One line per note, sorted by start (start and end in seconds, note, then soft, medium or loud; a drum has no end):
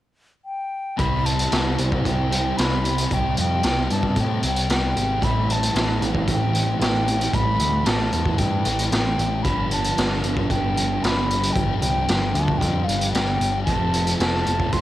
0.45 0.99 G5 medium
0.97 1.46 C2 medium
0.97 1.51 C3 medium
0.97 1.52 G3 medium
0.97 1.78 G3 medium
0.97 1.53 C4 medium
0.97 5.22 E4 medium
0.97 1.27 B5 loud
0.97 kick loud
0.97 closed hi-hat medium
1.26 1.79 A5 medium
1.26 closed hi-hat medium
1.39 closed hi-hat medium
1.51 1.76 C2 medium
1.51 2.03 C3 medium
1.51 2.04 G3 medium
1.51 2.06 C4 medium
1.51 3.64 E4 medium
1.51 snare loud
1.51 closed hi-hat medium
1.78 2.02 C2 medium
1.78 3.11 G3 medium
1.78 closed hi-hat medium
1.92 kick medium
2.04 2.52 C2 medium
2.04 2.56 C3 medium
2.04 2.34 G3 medium
2.04 2.31 C4 medium
2.04 2.59 G5 medium
2.04 kick medium
2.04 closed hi-hat medium
2.31 2.58 G3 medium
2.31 2.60 C4 medium
2.31 2.85 G4 medium
2.31 closed hi-hat medium
2.57 3.05 C2 medium
2.57 3.09 C3 medium
2.57 2.86 G3 medium
2.57 2.83 C4 medium
2.57 3.15 B5 loud
2.57 snare loud
2.57 closed hi-hat medium
2.83 3.11 G3 soft
2.83 3.12 C4 medium
2.83 4.43 G4 medium
2.83 closed hi-hat medium
2.98 closed hi-hat medium
3.10 3.34 C2 medium
3.10 3.62 C3 medium
3.10 3.91 G3 medium
3.10 3.65 G3 loud
3.10 3.66 C4 loud
3.10 3.39 G5 medium
3.10 kick loud
3.10 closed hi-hat medium
3.37 3.61 F2 medium
3.37 3.94 G5 loud
3.37 closed hi-hat medium
3.63 3.87 C2 medium
3.63 4.15 C3 medium
3.63 4.17 G3 medium
3.63 4.19 C4 medium
3.63 5.75 E4 medium
3.63 snare loud
3.63 closed hi-hat medium
3.90 4.14 G2 medium
3.90 5.22 G3 medium
3.90 4.22 A5 medium
3.90 closed hi-hat medium
4.03 kick medium
4.16 4.40 A2 medium
4.16 4.66 C3 medium
4.16 4.45 G3 medium
4.16 4.42 C4 medium
4.16 kick medium
4.16 closed hi-hat medium
4.21 4.45 G5 medium
4.42 4.67 C2 medium
4.42 4.69 G3 medium
4.42 4.70 C4 medium
4.42 4.96 G4 medium
4.42 4.69 G5 medium
4.42 closed hi-hat medium
4.56 closed hi-hat medium
4.67 4.93 C2 medium
4.67 5.19 C3 medium
4.67 4.97 G3 medium
4.67 4.94 C4 medium
4.67 snare loud
4.67 closed hi-hat medium
4.72 5.25 G5 medium
4.94 5.19 G#1 medium
4.94 5.21 G3 medium
4.94 5.22 C4 medium
4.94 6.54 G4 medium
4.94 closed hi-hat medium
5.20 5.69 A1 medium
5.20 5.73 A2 medium
5.20 5.75 E3 loud
5.20 6.01 G3 medium
5.20 5.76 A3 loud
5.20 9.45 C4 medium
5.20 9.45 E4 medium
5.20 kick medium
5.20 closed hi-hat medium
5.24 5.53 B5 loud
5.50 6.27 C4 medium
5.50 6.03 A5 medium
5.50 closed hi-hat medium
5.63 closed hi-hat medium
5.74 5.98 A1 medium
5.74 6.25 A2 medium
5.74 6.28 E3 medium
5.74 6.29 A3 medium
5.74 7.07 E4 medium
5.74 snare loud
5.74 closed hi-hat medium
6.01 6.25 A1 medium
6.01 7.33 G3 medium
6.01 closed hi-hat medium
6.15 kick medium
6.27 6.75 A1 medium
6.27 6.78 A2 medium
6.27 6.54 E3 medium
6.27 6.52 A3 medium
6.27 6.81 C4 medium
6.27 kick medium
6.27 closed hi-hat medium
6.31 6.79 G5 medium
6.53 6.80 E3 medium
6.53 6.81 A3 medium
6.53 7.07 G4 medium
6.53 closed hi-hat medium
6.79 7.27 A1 medium
6.79 7.31 A2 medium
6.79 7.08 E3 medium
6.79 7.05 A3 medium
6.79 7.59 C4 medium
6.79 7.36 G5 loud
6.79 snare loud
6.79 closed hi-hat medium
7.06 7.33 E3 medium
7.06 7.34 A3 medium
7.06 8.65 G4 medium
7.06 closed hi-hat medium
7.21 closed hi-hat medium
7.32 7.57 A1 medium
7.32 7.84 A2 medium
7.32 7.86 E3 medium
7.32 8.12 G3 medium
7.32 7.87 A3 medium
7.32 7.88 B5 loud
7.32 kick loud
7.32 closed hi-hat medium
7.59 7.83 D2 medium
7.59 8.39 C4 medium
7.59 closed hi-hat medium
7.86 8.10 A1 loud
7.86 8.37 A2 medium
7.86 8.38 E3 medium
7.86 8.40 A3 medium
7.86 9.19 E4 medium
7.86 8.40 A5 loud
7.86 snare loud
7.86 closed hi-hat medium
8.00 snare soft
8.13 8.36 E2 medium
8.13 9.44 G3 medium
8.13 closed hi-hat medium
8.26 kick medium
8.38 8.62 G2 medium
8.38 8.90 A2 medium
8.38 8.66 E3 medium
8.38 8.63 A3 medium
8.38 8.92 C4 medium
8.38 8.89 G5 medium
8.38 kick medium
8.38 closed hi-hat medium
8.65 8.89 A1 medium
8.65 8.91 E3 medium
8.65 8.92 A3 medium
8.65 9.18 G4 medium
8.65 closed hi-hat medium
8.79 closed hi-hat medium
8.90 9.15 A1 medium
8.90 9.42 A2 medium
8.90 9.19 E3 medium
8.90 9.15 A3 medium
8.90 9.45 C4 medium
8.90 9.44 G5 medium
8.90 snare loud
8.90 closed hi-hat medium
9.17 9.42 A1 medium
9.17 9.44 E3 medium
9.17 9.42 A3 medium
9.17 9.48 G4 medium
9.17 closed hi-hat medium
9.43 9.91 G1 medium
9.43 9.96 G2 medium
9.43 9.97 D3 medium
9.43 10.23 F3 medium
9.43 13.67 F3 medium
9.43 9.99 G3 loud
9.43 13.68 B3 medium
9.43 13.68 D4 medium
9.43 9.70 B5 loud
9.43 kick loud
9.43 closed hi-hat medium
9.71 10.49 B3 medium
9.71 10.21 A5 medium
9.71 closed hi-hat medium
9.84 closed hi-hat medium
9.96 10.21 G1 medium
9.96 10.48 G2 medium
9.96 10.50 D3 medium
9.96 10.51 G3 medium
9.96 11.30 D4 medium
9.96 snare loud
9.96 closed hi-hat medium
10.12 snare soft
10.23 10.47 G1 medium
10.23 11.55 F3 medium
10.23 closed hi-hat medium
10.37 kick medium
10.48 10.97 G1 medium
10.48 11.00 G2 medium
10.48 10.77 D3 medium
10.48 10.74 G3 medium
10.48 11.01 B3 medium
10.48 11.05 G5 medium
10.48 kick medium
10.48 closed hi-hat medium
10.75 11.01 D3 medium
10.75 11.03 G3 medium
10.75 11.27 G4 medium
10.75 closed hi-hat medium
11.01 11.50 G1 medium
11.01 11.53 G2 medium
11.01 11.30 D3 medium
11.01 11.27 G3 medium
11.01 11.81 B3 medium
11.01 11.54 B5 medium
11.01 snare loud
11.01 closed hi-hat medium
11.28 11.55 D3 medium
11.28 11.57 G3 medium
11.28 12.61 G4 medium
11.28 closed hi-hat medium
11.43 closed hi-hat medium
11.53 11.79 G1 medium
11.53 12.06 G2 medium
11.53 12.08 D3 loud
11.53 12.34 F3 medium
11.53 11.79 G5 medium
11.53 kick loud
11.53 closed hi-hat medium
11.58 12.09 G3 loud
11.80 12.05 C2 medium
11.80 12.60 B3 medium
11.80 12.35 G5 loud
11.80 closed hi-hat medium
12.07 12.32 G1 medium
12.07 12.59 G2 medium
12.07 12.60 D3 medium
12.07 12.61 G3 medium
12.07 13.41 D4 medium
12.07 snare loud
12.07 closed hi-hat medium
12.34 12.58 D2 medium
12.34 13.67 F3 medium
12.34 12.60 A5 medium
12.34 closed hi-hat medium
12.48 kick medium
12.58 12.85 F2 medium
12.58 13.12 G2 medium
12.58 12.88 D3 medium
12.58 13.13 B3 medium
12.58 12.86 G5 medium
12.58 kick medium
12.58 closed hi-hat medium
12.63 12.85 G3 medium
12.85 13.11 G1 medium
12.85 13.15 G3 medium
12.85 13.39 G4 medium
12.85 13.12 F5 medium
12.89 13.14 D3 medium
12.89 closed hi-hat medium
13.01 closed hi-hat medium
13.10 13.37 G1 medium
13.10 13.65 G2 medium
13.10 13.67 B3 medium
13.10 13.63 G5 medium
13.14 13.42 D3 medium
13.14 13.39 G3 medium
13.14 snare loud
13.14 closed hi-hat medium
13.40 13.64 G1 medium
13.40 13.67 D3 medium
13.40 13.66 G3 medium
13.40 13.67 G4 medium
13.40 closed hi-hat medium
13.64 14.14 F1 medium
13.64 14.18 F2 medium
13.64 14.46 F3 medium
13.64 14.15 A5 medium
13.64 kick loud
13.64 closed hi-hat medium
13.68 14.19 C3 medium
13.68 14.21 F3 medium
13.68 14.81 A3 medium
13.68 14.81 C4 medium
13.93 14.74 C4 medium
13.93 closed hi-hat medium
14.07 closed hi-hat medium
14.18 14.43 F1 loud
14.18 14.70 F2 medium
14.18 14.72 C3 medium
14.18 14.73 F3 medium
14.18 14.81 E4 medium
14.18 14.74 A5 loud
14.18 snare loud
14.18 closed hi-hat medium
14.35 snare soft
14.46 14.70 F1 medium
14.46 14.81 F3 medium
14.46 closed hi-hat medium
14.60 kick medium
14.72 14.81 F1 medium
14.72 14.81 F2 medium
14.72 14.81 C3 medium
14.72 14.81 F3 medium
14.72 14.81 C4 medium
14.72 14.81 C6 loud
14.72 kick loud
14.72 closed hi-hat medium